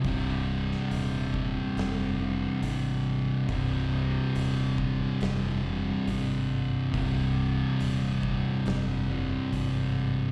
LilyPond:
<<
  \new Staff \with { instrumentName = "Distorted electric guitar" } { \clef bass \time 4/4 \key c \minor \tempo 4 = 70 <c, g, c>2~ <c, g, c>8 <c, g, c>8 <c, g, c>4 | <c, g, c>2~ <c, g, c>8 <c, g, c>8 <c, g, c>4 | <c, g, c>2~ <c, g, c>8 <c, g, c>8 <c, g, c>4 | }
  \new Staff \with { instrumentName = "Distorted electric guitar" } { \clef bass \time 4/4 \key c \minor <c, g, c>1 | <c, g, c>1 | <c, g, c>1 | }
  \new Staff \with { instrumentName = "Fingered electric bass" } { \clef bass \time 4/4 \key c \minor c,,4 ees,,4 f,,4 aes,,4 | c,,4 ees,,4 f,,4 aes,,4 | c,,4 ees,,4 f,,4 aes,,4 | }
  \new DrumStaff \with { instrumentName = "Drums" } \drummode { \time 4/4 <hho bd>8. sn16 hho8 bd8 <hho sn>4 hho4 | <hho bd>4 hho8 bd8 <hho sn>4 hho4 | <hho bd>4 hho8 bd8 <hho sn>4 hho4 | }
>>